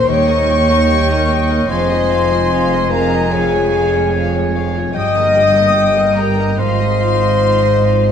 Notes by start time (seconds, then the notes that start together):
Already playing: A#2 C#4 F4 A#4 C5 C#5 F5 G#5 C6
0.06 D#2 D#3 G3 G4 C#5 D#5 G5 C#6
0.28 A#3 D#4 A#4 D#5
0.48 G3 G4 A#4 G5
0.69 A#3 A#4 D#5 G5
0.88 G3 G4 G5 A#5
1.09 A#3 A#4 D#5 G5
1.30 G3 G4 D#5 G5
1.50 A#3 A#4 D#5
1.69 F1 F2 F3 G#4 C5 F5 G#5 C6
1.91 G#3 D#4 F4 D#5
2.11 F3 G#4 F5
2.31 G#3 F4 D#5 F5
2.52 F3 G#4 F5 G#5
2.73 G#3 F4 D#5 F5
2.90 F3 G#4 A#4 D#5 F5 A#5
3.13 G#3 F4 G#4 D#5
3.32 F2 F3 G#4 C#5 F5 G#5
3.53 G#3 C#4 F4 C#5
3.74 F3 G#4 F5
3.94 G#3 F4 C#5 F5
4.14 F3 G#4 F5 G#5
4.34 G#3 F4 C#5 F5
4.55 F3 G#4 C#5 F5
4.75 G#3 F4 G#4 C#5
4.94 G1 G2 G3 G4 D#5 G5 D#6
5.16 A#3 A#4 D#5
5.36 G3 G4 G5
5.56 A#3 A#4 D#5
5.77 G3 G4 G5
5.97 A#3 A#4 D#5
6.16 G3 G4 A#4 G5 A#5
6.38 A#3 G4 A#4 D#5
6.58 G#1 G#2 F3 F4 C5 D#5 F5 C6
6.79 G#3 D#4 D#5
7.00 F3 F4 F5
7.20 G#3 D#4 D#5
7.41 F3 F4 F5
7.62 G#3 D#4 D#5
7.82 F3 F4 G#4 F5
8.02 G#3 D#4 F4 D#5